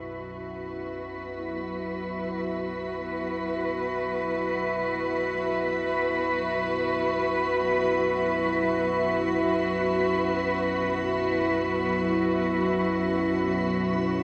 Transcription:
Already playing: B1 F#2 B2 F#3 E4 F#4 B4 E5

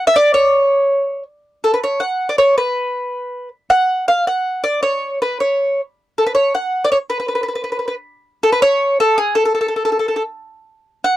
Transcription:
0.07 E5
0.16 D5
0.34 C#5
1.64 A4
1.74 B4
1.84 C#5
2.00 F#5
2.29 D5
2.38 C#5
2.58 B4
3.70 F#5
4.08 F5
4.27 F#5
4.64 D5
4.83 C#5
5.22 B4
5.40 C#5
6.18 A4
6.27 B4
6.35 C#5
6.55 F#5
6.84 D5
6.92 C#5
7.10 B4
7.20 B4
7.28 B4
7.35 B4
7.43 B4
7.48 B4
7.55 B4
7.64 B4
7.72 B4
7.79 B4
7.88 B4
8.43 A4
8.52 B4
8.62 C#5
9.00 A4
9.18 G#4
9.35 A4
9.45 A4
9.55 A4
9.61 A4
9.68 A4
9.76 A4
9.85 A4
9.92 A4
9.99 A4
10.08 A4
10.16 A4
11.04 F#5

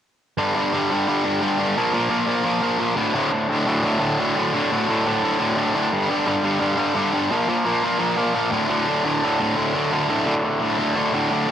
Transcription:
0.37 G2 D3 G3
0.54 G2 D3 G3
0.73 G2 D3 G3
0.91 G2 D3 G3
1.08 G2 D3 G3
1.25 G2 D3 G3
1.42 G2 D3 G3
1.59 G2 D3 G3
1.77 A#2 F3 A#3
1.93 A#2 F3 A#3
2.10 A#2 F3 A#3
2.27 A#2 F3 A#3
2.45 A#2 F3 A#3
2.62 A#2 F3 A#3
2.79 A#2 F3 A#3
2.95 D2 A2 D3
3.14 D2 A2 D3
3.32 D2 A2 D3
3.49 D2 A2 D3
3.66 D2 A2 D3
3.84 D2 A2 D3
4.00 D2 A2 D3
4.19 D2 A2 D3
4.36 D2 A2 D3
4.54 D2 A2 D3
4.71 D2 A2 D3
4.88 D2 A2 D3
5.05 D2 A2 D3
5.23 D2 A2 D3
5.39 D2 A2 D3
5.56 D2 A2 D3
5.74 D2 A2 D3
5.93 G2 D3 G3
6.10 G2 D3 G3
6.27 G2 D3 G3
6.44 G2 D3 G3
6.61 G2 D3 G3
6.77 G2 D3 G3
6.95 G2 D3 G3
7.13 G2 D3 G3
7.31 A#2 F3 A#3
7.48 A#2 F3 A#3
7.66 A#2 F3 A#3
7.83 A#2 F3 A#3
7.99 A#2 F3 A#3
8.17 A#2 F3 A#3
8.34 A#2 F3 A#3
8.51 D2 A2 D3
8.69 D2 A2 D3
8.87 D2 A2 D3
9.04 D2 A2 D3
9.23 D2 A2 D3
9.40 D2 A2 D3
9.56 D2 A2 D3
9.74 D2 A2 D3
9.92 D2 A2 D3
10.09 D2 A2 D3
10.26 D2 A2 D3
10.44 D2 A2 D3
10.60 D2 A2 D3
10.78 D2 A2 D3
10.96 D2 A2 D3
11.13 D2 A2 D3
11.31 D2 A2 D3
11.48 G2

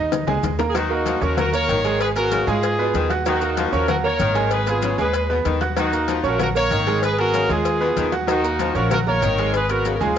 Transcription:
Already playing: D#2 D#4 D#5 D#6
0.12 cowbell, low bongo, low conga, maracas
0.27 C#2 G#3 G#4 G#5, low bongo, low conga
0.43 D#2, cowbell, low bongo, low conga, maracas
0.59 A#3 A#4 A#5, cowbell, low bongo, low conga, maracas
0.69 G#4
0.75 D#3 F#3 D#4 F#4 F#5, cowbell, maracas
0.90 A#3 A#4 A#5, high conga
1.06 F3, cowbell, high conga, maracas
1.21 D#2 C#4 F#4 A#4 C#5 C#6, high conga, maracas
1.37 F#3 F#4 A#4 F#5, cowbell, high conga, low conga, maracas
1.53 A#3 A#4 C#5 A#5, maracas
1.68 G#1 D#3, cowbell, high conga, maracas
1.84 G#3 G#4 G#5, cowbell, maracas
2.00 G#4 B4, cowbell, maracas
2.16 B3 F#4 G#4 A#4, cowbell, high conga, maracas
2.31 C#3, cowbell, high conga, maracas
2.47 G#2 G#3 F4 G#4 G#5, maracas
2.63 cowbell, maracas
2.78 B2 B3 B4 B5, high conga
2.94 D#2 D#3, cowbell, high conga, maracas
3.10 F#4 F#5 F#6, cowbell, high conga, maracas
3.26 D#3 F#3 D#4 F#4 F#5, cowbell, high conga, maracas
3.41 A#3 A#4 A#5, high conga, maracas
3.57 F3, cowbell, high conga, maracas
3.72 D#2 C#4 F#4 A#4 C#5 C#6, high conga, maracas
3.88 F#3 F#4 A#4 F#5, cowbell, high conga, low conga, maracas
4.04 A#3 A#4 C#5 A#5, high conga
4.19 G#1 D#3, cowbell, high conga, maracas
4.35 G#3 G#4 G#5, cowbell, high conga, maracas
4.51 G#4 B4, cowbell, high conga, maracas
4.67 B3 F4 G#4 B4 B5, cowbell, high conga, maracas
4.82 C#3, cowbell, high conga, maracas
4.98 D#2 G#3 G#4 B4 G#5, maracas
5.13 cowbell, high conga, maracas
5.29 B2 B3 B4 B5, high conga
5.45 D#2 D#3, cowbell, high conga, maracas
5.61 F#4 F#5 F#6, cowbell, high conga, maracas
5.76 D#3 F#3 D#4 F#4 F#5, cowbell, high conga, maracas
5.92 A#3 A#4 A#5, high conga, maracas
6.08 F3, cowbell, high conga, maracas
6.23 A#1 C#4 F#4 A#4 C#5 C#6, high conga, maracas
6.39 F#3 F#4 A#4 F#5, cowbell, high conga, low conga, maracas
6.55 A#3 A#4 C#5 A#5, maracas
6.71 G#1 D#3, cowbell, high conga, maracas
6.87 G#3 G#4 G#5, cowbell, high conga, maracas
7.03 G#4 B4, cowbell, high conga, maracas
7.18 B3 F#4 G#4 A#4, cowbell, high conga
7.33 C#3, cowbell, high conga, maracas
7.49 D#2 G#3 F4 G#4 G#5, maracas
7.65 cowbell, maracas
7.80 B2 B3 B4 B5, high conga
7.96 D#2 D#3, cowbell, high conga, maracas
8.12 F#4 F#5 F#6, cowbell, high conga, maracas
8.27 D#3 F#3 D#4 F#4 F#5, cowbell, high conga, maracas
8.43 A#3 A#4 A#5, high conga, maracas
8.59 F3, cowbell, high conga, maracas
8.75 A#1 C#4 F#4 A#4 C#5 C#6, high conga, maracas
8.91 F#3 F#4 A#4 F#5, cowbell, high conga, low conga, maracas
9.07 A#3 A#4 C#5 A#5, high conga, low conga
9.22 G#1 D#3, cowbell, high conga, maracas
9.38 G#3 G#4 G#5, cowbell, maracas
9.54 G#4 B4, cowbell, high conga, maracas
9.69 B3 F#4 A#4 B4 B5, cowbell, high conga, maracas
9.85 C#3, cowbell, high conga, maracas
9.95 A#4
10.00 D#2 G#3 F4 G#4 G#5, maracas
10.06 high conga

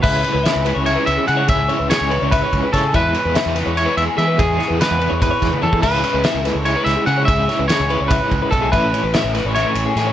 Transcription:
0.03 C#2 C#3 G#3 C#4 E4 B4 E5, kick, crash
0.23 G#3 C#4 E4 C#5, ride
0.34 C#2 B4
0.44 C#3 G#3 C#4 E4 E5, snare, ride
0.56 C#2
0.65 G#3 C#4 E4 B4, ride
0.75 C#2 C#5
0.85 C#5 E5, ride
0.95 B4
1.06 C#2 E5, ride
1.18 G#4
1.27 C#3 G#3 C#4 E4 G#4 F#5, ride
1.37 C#5
1.47 C#2 C#3 G#3 C#4 E4 G#4 E5, kick, ride
1.68 G#3 C#4 E4 C#5, ride
1.79 C#2 B4
1.89 C#3 G#3 C#4 E4 G#4 C#5, snare, ride
2.01 C#2
2.10 G#3 C#4 E4 B4, ride
2.22 C#2 C#5
2.31 B4 E5, kick, ride
2.43 C#5
2.53 C#2, kick, ride
2.63 B4
2.72 C#3 G#3 C#4 E4 A4 C#5, kick, snare, ride
2.84 G#4
2.93 E2 E3 G#3 B3 E4 B4 E5, kick, ride
3.14 G#3 B3 E4 C#5, ride
3.25 E2 B4
3.35 E3 G#3 B3 E4 E5, snare, ride
3.46 E2
3.55 G#3 B3 E4 B4, snare, ride
3.66 E2 C#5
3.75 C#5 E5, ride
3.86 B4
3.97 E2 E5, ride
4.06 G#4
4.17 E3 G#3 B3 E4 G#4 E5, ride
4.28 B4
4.38 E2 E3 G#3 B3 E4 G#4, kick, ride
4.58 G#3 B3 E4 C#5, snare, ride
4.68 E2 B4
4.78 E3 G#3 B3 E4 G#4 B4, snare, ride
4.91 E2
4.99 G#3 B3 E4 B4, ride
5.10 E2 C#5
5.20 B4 E5, kick, ride
5.31 C#5
5.42 E2, kick, snare, ride
5.51 B4, high tom
5.61 E3 G#3 B3 E4 A4 C#5, mid tom
5.73 G#4, kick
5.82 C#2 C#3 G#3 C#4 E4 B4 E5, kick, ride, crash
6.03 G#3 C#4 E4 C#5, ride
6.14 C#2 B4
6.23 C#3 G#3 C#4 E4 E5, snare, ride
6.35 C#2
6.44 G#3 C#4 E4 A4 B4, snare, ride
6.55 C#2 C#5
6.65 C#5 E5, ride
6.76 B4
6.85 C#2 E5, snare, ride
6.97 G#4
7.06 C#3 G#3 C#4 E4 G#4 F#5, ride
7.18 C#5
7.25 C#2 C#3 G#3 C#4 E4 G#4 E5, kick, ride
7.47 G#3 C#4 E4 C#5, snare, ride
7.59 C#2 B4
7.68 C#3 G#3 C#4 E4 G#4 C#5, snare, ride
7.80 C#2
7.88 G#3 C#4 E4 B4, ride
8.00 C#2 C#5
8.08 B4 E5, kick, ride
8.22 C#5
8.31 C#2, kick, ride
8.43 B4
8.51 B1 C#3 G#3 C#4 E4 A4 C#5, kick, ride
8.62 G#4
8.71 A1 A2 E3 A3 C#4 E4 B4 E5, kick, ride
8.91 A3 C#4 E4 C#5, ride
9.04 A1 B4
9.12 E3 A3 C#4 E4 E5, snare, ride
9.24 A1
9.34 A3 C#4 E4 B4, snare, ride
9.45 A1 C#5
9.55 C#5 E5, snare, ride
9.66 B4
9.75 A1, ride
9.86 G#4
9.95 A2 E3 A3 C#4 E4 G#4, snare, ride
10.07 C#5

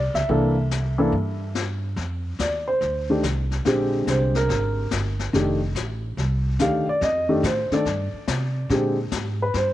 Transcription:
Already playing: C2 D5
0.14 C#2 E5, snare
0.29 C2 E3 A#3 D4 A4, brush sweep, kick
0.71 snare, hi-hat pedal
0.98 E3 A#3 D4 A4
1.12 G2, brush sweep, kick
1.55 snare, hi-hat pedal
1.96 F2, brush sweep, kick, snare
2.39 D#2 D5, kick, snare, hi-hat pedal
2.68 C5
2.81 D2, brush sweep, kick, snare
3.10 D#3 A3 D4 G4
3.23 C2, kick, snare, hi-hat pedal
3.51 snare
3.65 A#1 D3 G#3 C4 G4, brush sweep, kick, snare
4.07 C2 C5, kick, snare, hi-hat pedal
4.35 A#4, snare
4.49 G#1, brush sweep, kick, snare
4.91 G1, kick, snare, hi-hat pedal
5.19 snare
5.33 F1 D#3 A3 D4 G4, brush sweep, kick, snare
5.75 A1, kick, snare, hi-hat pedal
6.17 C2, brush sweep, kick, snare
6.59 D2 D#3 A3 D4 G4 F5, kick, snare, hi-hat pedal
6.87 D5, muted upright bass stroke
7.01 F2 D#5, brush sweep, kick, snare
7.29 D#3 A3 D4 G4
7.43 A2 C5, kick, snare, hi-hat pedal
7.71 D#3 A3 D4 A4 D5, muted upright bass stroke, snare
7.85 G2, brush sweep, kick, snare
8.13 muted upright bass stroke
8.28 C3, kick, snare, hi-hat pedal
8.69 A#2 D3 G#3 C4 G4, brush sweep, kick, snare
9.12 G#2, kick, snare, hi-hat pedal
9.42 B4
9.54 G2 C5, brush sweep, kick, snare

